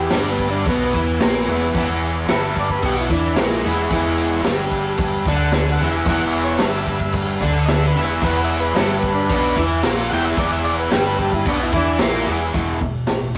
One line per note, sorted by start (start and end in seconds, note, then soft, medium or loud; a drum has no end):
0.00 0.12 E2 medium
0.00 0.12 E3 loud
0.00 0.12 G4 loud
0.00 3.85 B4 medium
0.00 3.86 E5 medium
0.00 3.87 G#5 medium
0.10 0.63 G1 loud
0.10 0.65 G2 medium
0.10 0.66 G3 loud
0.10 0.30 D4 medium
0.10 snare loud
0.10 crash medium
0.10 shaker medium
0.30 0.48 B3 medium
0.38 kick medium
0.38 crash medium
0.38 shaker loud
0.50 0.67 D4 loud
0.50 shaker soft
0.65 0.91 B1 medium
0.65 0.93 B2 medium
0.65 0.93 B3 loud
0.65 0.83 B3 loud
0.65 kick loud
0.65 crash medium
0.65 shaker medium
0.85 1.89 B3 loud
0.91 1.18 E2 loud
0.91 1.19 E3 medium
0.91 kick medium
0.91 crash medium
0.91 shaker loud
0.95 1.20 E4 loud
1.19 1.46 A#1 loud
1.19 1.46 A#2 medium
1.19 1.47 A#3 loud
1.19 snare loud
1.19 crash medium
1.19 shaker medium
1.35 snare soft
1.46 1.73 E1 loud
1.46 1.74 E2 medium
1.46 1.74 E3 loud
1.46 crash medium
1.46 shaker loud
1.73 2.25 E1 medium
1.73 2.29 E2 medium
1.73 2.30 E3 loud
1.73 kick loud
1.73 crash medium
1.73 shaker medium
2.00 crash medium
2.00 shaker loud
2.27 2.79 G1 loud
2.27 2.82 G2 loud
2.27 2.82 G3 loud
2.27 snare loud
2.27 crash medium
2.27 shaker medium
2.31 2.56 E5 loud
2.54 kick medium
2.54 crash medium
2.54 shaker loud
2.59 2.70 D5 medium
2.67 kick medium
2.67 shaker soft
2.71 2.83 B4 loud
2.81 3.08 B1 medium
2.81 3.09 B2 medium
2.81 3.09 B3 loud
2.81 kick loud
2.81 crash medium
2.81 shaker medium
2.85 2.97 G4 loud
3.01 3.11 E4 loud
3.09 3.34 E2 medium
3.09 3.36 E3 medium
3.09 3.37 D4 medium
3.09 3.36 E4 loud
3.09 kick medium
3.09 crash medium
3.09 shaker medium
3.36 3.62 A#1 loud
3.36 3.63 A#2 loud
3.36 4.41 G#3 medium
3.36 3.64 A#3 loud
3.36 4.42 E4 loud
3.36 snare loud
3.36 crash medium
3.36 shaker medium
3.64 3.89 E1 medium
3.64 3.90 E2 medium
3.64 3.91 E3 loud
3.64 crash medium
3.64 shaker medium
3.77 shaker soft
3.89 4.41 E1 medium
3.89 4.44 E2 medium
3.89 8.17 B4 medium
3.89 8.18 E5 medium
3.89 8.19 G#5 medium
3.89 kick loud
3.89 crash medium
3.89 shaker medium
3.93 4.45 E3 loud
4.17 crash medium
4.17 shaker medium
4.32 shaker soft
4.44 5.21 G1 loud
4.44 5.25 G2 medium
4.44 5.26 G3 loud
4.44 snare loud
4.44 crash medium
4.44 shaker medium
4.71 kick medium
4.71 crash medium
4.71 shaker loud
4.86 shaker soft
4.98 kick loud
4.98 crash medium
4.98 shaker medium
5.25 5.76 D2 loud
5.25 5.80 D3 medium
5.25 5.80 D4 medium
5.25 kick medium
5.25 crash medium
5.25 shaker medium
5.36 5.53 F#5 loud
5.52 snare loud
5.52 crash medium
5.52 shaker medium
5.66 snare soft
5.72 5.89 F#5 loud
5.79 6.04 E1 loud
5.79 6.06 E2 loud
5.79 6.07 E3 medium
5.79 crash medium
5.79 shaker medium
5.91 6.07 E5 medium
6.05 6.56 E1 loud
6.05 6.60 E2 loud
6.05 kick loud
6.05 crash medium
6.05 shaker medium
6.09 6.61 E3 loud
6.09 6.25 F#5 loud
6.27 6.43 E5 loud
6.32 crash medium
6.32 shaker medium
6.44 6.61 C#5 loud
6.44 shaker soft
6.58 7.38 G1 loud
6.58 7.40 G2 loud
6.58 7.41 G3 loud
6.58 7.13 E5 loud
6.58 snare loud
6.58 crash medium
6.58 shaker medium
6.86 kick medium
6.86 crash medium
6.86 shaker loud
7.00 kick medium
7.00 shaker soft
7.12 kick loud
7.12 crash medium
7.12 shaker medium
7.40 7.91 D2 loud
7.40 7.95 D3 medium
7.40 7.95 D4 loud
7.40 kick loud
7.40 crash medium
7.40 shaker medium
7.66 7.69 D#5 medium
7.66 7.86 E5 loud
7.66 snare loud
7.66 crash medium
7.66 shaker medium
7.87 8.04 B4 medium
7.95 8.21 E1 loud
7.95 8.22 E2 medium
7.95 8.22 E3 loud
7.95 crash medium
8.05 8.22 E5 loud
8.20 8.72 E1 loud
8.20 8.77 E2 loud
8.20 12.49 B4 medium
8.20 12.50 E5 medium
8.20 12.51 G#5 medium
8.20 kick loud
8.20 crash medium
8.20 shaker medium
8.24 8.77 E3 loud
8.24 8.41 B4 loud
8.44 8.60 E5 loud
8.49 crash medium
8.49 shaker loud
8.60 8.76 B4 loud
8.65 shaker soft
8.74 9.27 G1 loud
8.74 9.30 G2 loud
8.74 9.30 G3 loud
8.74 8.77 D#5 medium
8.74 snare loud
8.74 crash medium
8.74 shaker medium
8.80 8.96 E5 loud
8.99 9.13 B4 loud
8.99 kick medium
8.99 crash medium
9.05 shaker loud
9.14 9.63 D4 loud
9.14 9.65 B4 loud
9.14 shaker soft
9.29 9.55 B1 medium
9.29 9.56 B2 loud
9.29 9.56 B3 loud
9.29 kick loud
9.29 crash loud
9.29 shaker medium
9.56 9.82 E2 loud
9.56 9.83 E3 loud
9.56 9.84 E4 loud
9.56 kick loud
9.56 crash medium
9.56 shaker loud
9.83 10.09 A#1 loud
9.83 10.10 A#2 loud
9.83 10.10 A#3 loud
9.83 snare loud
9.83 crash medium
9.83 shaker medium
9.97 snare soft
10.10 10.36 E1 loud
10.10 10.37 E2 medium
10.10 10.37 E3 loud
10.10 10.12 F#5 medium
10.10 10.25 G5 loud
10.10 crash medium
10.25 10.37 E5 loud
10.37 10.88 E1 loud
10.37 10.91 E2 loud
10.37 10.91 E3 loud
10.37 10.51 D5 loud
10.37 kick loud
10.37 crash medium
10.37 shaker medium
10.52 10.64 E5 loud
10.64 10.77 D5 loud
10.64 crash medium
10.64 shaker loud
10.79 10.91 B4 medium
10.91 11.43 G1 loud
10.91 11.45 G2 medium
10.91 11.46 G3 loud
10.91 11.04 G4 loud
10.91 snare loud
10.91 crash medium
10.91 shaker medium
11.07 11.19 B4 medium
11.18 11.33 G4 loud
11.18 kick medium
11.18 crash medium
11.18 shaker loud
11.32 11.46 E4 loud
11.32 kick medium
11.32 shaker soft
11.45 11.71 B1 medium
11.45 11.72 B2 loud
11.45 11.73 B3 loud
11.45 11.60 D4 loud
11.45 kick loud
11.45 crash medium
11.45 shaker medium
11.63 11.74 E4 loud
11.70 11.98 E2 loud
11.70 11.99 E3 loud
11.70 11.99 E4 loud
11.70 kick medium
11.70 crash medium
11.70 shaker loud
11.76 12.01 D4 loud
11.84 shaker soft
11.97 12.25 A#1 loud
11.97 12.26 A#2 loud
11.97 snare loud
11.97 crash medium
11.97 shaker medium
12.02 12.27 A#3 loud
12.02 12.54 E4 loud
12.14 snare soft
12.24 12.52 E1 loud
12.24 12.52 E2 medium
12.24 crash medium
12.24 shaker medium
12.29 12.54 E3 loud
12.38 shaker soft
12.52 12.95 E1 medium
12.52 12.79 E2 medium
12.52 12.80 B2 medium
12.52 12.80 E3 medium
12.52 kick loud
12.52 open hi-hat medium
12.52 shaker medium
12.79 13.05 E2 medium
12.79 13.06 B2 medium
12.79 kick medium
12.79 shaker loud
13.07 13.38 A1 medium
13.07 13.33 E2 medium
13.07 13.33 B2 medium
13.07 snare loud
13.07 open hi-hat medium
13.07 shaker medium
13.34 shaker loud